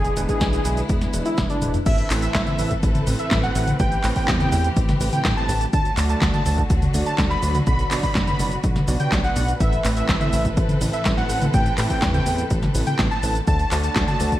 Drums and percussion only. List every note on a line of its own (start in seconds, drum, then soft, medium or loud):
0.05 closed hi-hat soft
0.05 cabasa soft
0.17 closed hi-hat medium
0.17 cabasa medium
0.29 kick medium
0.29 closed hi-hat soft
0.29 cabasa soft
0.41 kick loud
0.41 snare loud
0.41 closed hi-hat medium
0.41 cabasa soft
0.53 closed hi-hat soft
0.53 cabasa soft
0.65 closed hi-hat loud
0.65 cabasa medium
0.77 closed hi-hat soft
0.77 cabasa soft
0.89 kick loud
0.89 closed hi-hat medium
0.89 cabasa soft
1.01 snare soft
1.01 closed hi-hat soft
1.01 cabasa soft
1.13 closed hi-hat loud
1.13 cabasa medium
1.26 closed hi-hat soft
1.26 cabasa soft
1.38 kick loud
1.38 snare loud
1.38 closed hi-hat medium
1.38 cabasa soft
1.50 closed hi-hat soft
1.50 high tom soft
1.50 cabasa soft
1.62 closed hi-hat loud
1.62 mid tom medium
1.62 cabasa medium
1.74 closed hi-hat soft
1.74 mid tom medium
1.74 cabasa soft
1.86 kick loud
1.86 closed hi-hat medium
1.86 crash loud
1.86 cabasa soft
1.98 closed hi-hat soft
1.98 cabasa soft
2.10 clap medium
2.10 open hi-hat loud
2.10 cabasa medium
2.22 closed hi-hat medium
2.22 cabasa soft
2.35 kick loud
2.35 snare loud
2.35 clap loud
2.35 closed hi-hat medium
2.35 cabasa soft
2.47 closed hi-hat soft
2.47 high tom medium
2.47 cabasa soft
2.59 open hi-hat loud
2.59 cabasa medium
2.71 kick medium
2.71 closed hi-hat medium
2.71 cabasa soft
2.83 kick loud
2.83 closed hi-hat medium
2.83 cabasa soft
2.95 closed hi-hat soft
2.95 high tom medium
2.95 cabasa soft
3.07 open hi-hat loud
3.07 cabasa medium
3.19 closed hi-hat medium
3.19 cabasa soft
3.31 kick loud
3.31 snare loud
3.31 clap medium
3.31 closed hi-hat medium
3.31 cabasa soft
3.43 snare soft
3.43 cabasa soft
3.55 open hi-hat loud
3.55 cabasa medium
3.68 closed hi-hat medium
3.68 high tom medium
3.68 cabasa soft
3.80 kick loud
3.80 closed hi-hat medium
3.80 cabasa soft
3.92 closed hi-hat soft
3.92 cabasa soft
4.04 clap medium
4.04 open hi-hat loud
4.04 cabasa medium
4.16 kick medium
4.16 open hi-hat medium
4.16 cabasa soft
4.28 kick loud
4.28 snare loud
4.28 clap loud
4.28 closed hi-hat medium
4.28 cabasa soft
4.40 closed hi-hat soft
4.40 high tom medium
4.40 cabasa soft
4.52 open hi-hat loud
4.52 cabasa medium
4.64 closed hi-hat medium
4.64 cabasa soft
4.76 kick loud
4.76 closed hi-hat medium
4.76 cabasa soft
4.89 snare soft
4.89 closed hi-hat soft
4.89 high tom medium
4.89 cabasa soft
5.01 open hi-hat loud
5.01 cabasa medium
5.13 closed hi-hat medium
5.13 high tom medium
5.13 cabasa soft
5.25 kick loud
5.25 snare loud
5.25 clap medium
5.25 closed hi-hat medium
5.25 cabasa soft
5.37 cabasa soft
5.49 open hi-hat loud
5.49 cabasa medium
5.61 closed hi-hat medium
5.61 cabasa soft
5.73 kick loud
5.73 closed hi-hat medium
5.73 cabasa soft
5.85 closed hi-hat soft
5.85 cabasa soft
5.97 clap medium
5.97 open hi-hat loud
5.97 cabasa medium
6.09 closed hi-hat medium
6.09 cabasa soft
6.22 kick loud
6.22 snare loud
6.22 clap loud
6.22 closed hi-hat medium
6.22 cabasa soft
6.34 closed hi-hat soft
6.34 high tom medium
6.34 cabasa soft
6.46 open hi-hat loud
6.46 cabasa medium
6.58 kick medium
6.58 closed hi-hat medium
6.58 cabasa soft
6.70 kick loud
6.70 closed hi-hat medium
6.70 cabasa soft
6.82 closed hi-hat soft
6.82 high tom medium
6.82 cabasa soft
6.94 open hi-hat loud
6.94 cabasa medium
7.06 closed hi-hat soft
7.06 cabasa soft
7.18 kick loud
7.18 snare loud
7.18 clap medium
7.18 closed hi-hat medium
7.18 cabasa soft
7.31 snare soft
7.31 cabasa soft
7.43 open hi-hat loud
7.43 cabasa medium
7.55 closed hi-hat medium
7.55 high tom medium
7.55 cabasa soft
7.67 kick loud
7.67 closed hi-hat medium
7.67 cabasa soft
7.79 closed hi-hat soft
7.79 cabasa soft
7.91 clap medium
7.91 open hi-hat loud
7.91 cabasa medium
8.03 kick medium
8.03 open hi-hat medium
8.03 cabasa soft
8.15 kick loud
8.15 snare loud
8.15 clap medium
8.15 closed hi-hat medium
8.15 cabasa soft
8.27 closed hi-hat soft
8.27 high tom medium
8.27 cabasa soft
8.39 open hi-hat loud
8.39 cabasa medium
8.52 closed hi-hat medium
8.52 cabasa soft
8.64 kick loud
8.64 closed hi-hat medium
8.64 cabasa soft
8.76 snare soft
8.76 closed hi-hat soft
8.76 high tom medium
8.76 cabasa soft
8.88 open hi-hat loud
8.88 cabasa medium
9.00 closed hi-hat soft
9.00 high tom medium
9.00 cabasa soft
9.12 kick loud
9.12 snare loud
9.12 clap medium
9.12 closed hi-hat medium
9.12 cabasa soft
9.24 closed hi-hat soft
9.24 cabasa soft
9.36 open hi-hat loud
9.36 cabasa medium
9.48 closed hi-hat medium
9.48 cabasa soft
9.60 kick loud
9.60 closed hi-hat medium
9.60 cabasa soft
9.73 closed hi-hat soft
9.73 cabasa soft
9.85 clap medium
9.85 open hi-hat loud
9.85 cabasa medium
9.97 closed hi-hat medium
9.97 cabasa soft
10.09 kick loud
10.09 snare loud
10.09 clap medium
10.09 closed hi-hat medium
10.09 cabasa soft
10.21 closed hi-hat soft
10.21 high tom medium
10.21 cabasa soft
10.33 open hi-hat loud
10.33 cabasa medium
10.45 kick medium
10.45 closed hi-hat medium
10.45 cabasa soft
10.57 kick loud
10.57 closed hi-hat medium
10.57 cabasa soft
10.69 closed hi-hat soft
10.69 high tom medium
10.69 cabasa soft
10.81 open hi-hat loud
10.81 cabasa medium
10.93 closed hi-hat medium
10.93 cabasa soft
11.05 kick loud
11.05 snare loud
11.05 clap medium
11.05 closed hi-hat medium
11.05 cabasa soft
11.17 snare soft
11.17 cabasa soft
11.29 open hi-hat loud
11.29 cabasa medium
11.42 closed hi-hat medium
11.42 high tom medium
11.42 cabasa soft
11.54 kick loud
11.54 closed hi-hat medium
11.54 cabasa soft
11.66 closed hi-hat soft
11.66 cabasa soft
11.78 clap medium
11.78 open hi-hat loud
11.78 cabasa medium
11.90 kick medium
11.90 open hi-hat medium
11.90 cabasa soft
12.02 kick loud
12.02 snare loud
12.02 clap medium
12.02 closed hi-hat medium
12.02 cabasa soft
12.14 closed hi-hat soft
12.14 high tom medium
12.14 cabasa soft
12.26 open hi-hat loud
12.26 cabasa medium
12.38 closed hi-hat medium
12.38 cabasa soft
12.50 kick loud
12.50 closed hi-hat medium
12.50 cabasa soft
12.63 snare soft
12.63 closed hi-hat soft
12.63 high tom medium
12.63 cabasa soft
12.75 open hi-hat loud
12.75 cabasa medium
12.87 closed hi-hat medium
12.87 high tom medium
12.87 cabasa soft
12.99 kick loud
12.99 snare loud
12.99 clap medium
12.99 closed hi-hat medium
12.99 cabasa soft
13.11 cabasa soft
13.23 open hi-hat loud
13.23 cabasa medium
13.35 closed hi-hat medium
13.35 cabasa soft
13.47 kick loud
13.47 closed hi-hat medium
13.47 cabasa soft
13.59 closed hi-hat soft
13.59 cabasa soft
13.71 clap medium
13.71 open hi-hat loud
13.71 cabasa medium
13.84 closed hi-hat medium
13.84 cabasa soft
13.96 kick loud
13.96 snare loud
13.96 clap medium
13.96 closed hi-hat medium
13.96 cabasa soft
14.08 closed hi-hat soft
14.08 high tom medium
14.08 cabasa soft
14.20 open hi-hat loud
14.20 cabasa medium
14.32 kick medium
14.32 closed hi-hat medium
14.32 cabasa soft